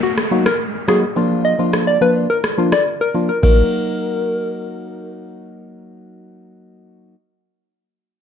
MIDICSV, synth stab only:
0, 0, Header, 1, 2, 480
1, 0, Start_track
1, 0, Key_signature, -6, "minor"
1, 0, Tempo, 566038
1, 990, Time_signature, 4, 2, 24, 8
1, 6962, End_track
2, 0, Start_track
2, 0, Title_t, "Synth stab"
2, 0, Program_c, 0, 62
2, 264, Note_on_c, 0, 54, 81
2, 266, Note_on_c, 0, 58, 71
2, 267, Note_on_c, 0, 63, 75
2, 269, Note_on_c, 0, 66, 88
2, 402, Note_off_c, 0, 54, 0
2, 403, Note_off_c, 0, 58, 0
2, 404, Note_off_c, 0, 63, 0
2, 405, Note_off_c, 0, 66, 0
2, 744, Note_on_c, 0, 54, 78
2, 747, Note_on_c, 0, 58, 72
2, 748, Note_on_c, 0, 63, 70
2, 750, Note_on_c, 0, 66, 81
2, 882, Note_off_c, 0, 54, 0
2, 884, Note_off_c, 0, 58, 0
2, 884, Note_off_c, 0, 63, 0
2, 885, Note_off_c, 0, 66, 0
2, 985, Note_on_c, 0, 53, 88
2, 987, Note_on_c, 0, 58, 81
2, 989, Note_on_c, 0, 62, 81
2, 990, Note_on_c, 0, 65, 100
2, 1318, Note_off_c, 0, 53, 0
2, 1319, Note_off_c, 0, 58, 0
2, 1320, Note_off_c, 0, 62, 0
2, 1321, Note_off_c, 0, 65, 0
2, 1346, Note_on_c, 0, 53, 73
2, 1348, Note_on_c, 0, 58, 67
2, 1350, Note_on_c, 0, 62, 72
2, 1351, Note_on_c, 0, 65, 86
2, 1679, Note_off_c, 0, 53, 0
2, 1680, Note_off_c, 0, 58, 0
2, 1681, Note_off_c, 0, 62, 0
2, 1682, Note_off_c, 0, 65, 0
2, 1705, Note_on_c, 0, 53, 75
2, 1706, Note_on_c, 0, 58, 69
2, 1708, Note_on_c, 0, 62, 70
2, 1709, Note_on_c, 0, 65, 83
2, 1928, Note_off_c, 0, 53, 0
2, 1929, Note_off_c, 0, 58, 0
2, 1930, Note_off_c, 0, 62, 0
2, 1930, Note_off_c, 0, 65, 0
2, 2185, Note_on_c, 0, 53, 79
2, 2188, Note_on_c, 0, 58, 71
2, 2189, Note_on_c, 0, 62, 73
2, 2191, Note_on_c, 0, 65, 87
2, 2323, Note_off_c, 0, 53, 0
2, 2324, Note_off_c, 0, 58, 0
2, 2325, Note_off_c, 0, 62, 0
2, 2326, Note_off_c, 0, 65, 0
2, 2666, Note_on_c, 0, 53, 74
2, 2667, Note_on_c, 0, 58, 67
2, 2668, Note_on_c, 0, 62, 66
2, 2670, Note_on_c, 0, 65, 85
2, 2803, Note_off_c, 0, 53, 0
2, 2804, Note_off_c, 0, 58, 0
2, 2805, Note_off_c, 0, 62, 0
2, 2805, Note_off_c, 0, 65, 0
2, 2906, Note_on_c, 0, 54, 82
2, 2909, Note_on_c, 0, 58, 75
2, 2911, Note_on_c, 0, 63, 77
2, 2914, Note_on_c, 0, 66, 90
2, 6066, Note_off_c, 0, 54, 0
2, 6067, Note_off_c, 0, 58, 0
2, 6068, Note_off_c, 0, 63, 0
2, 6070, Note_off_c, 0, 66, 0
2, 6962, End_track
0, 0, End_of_file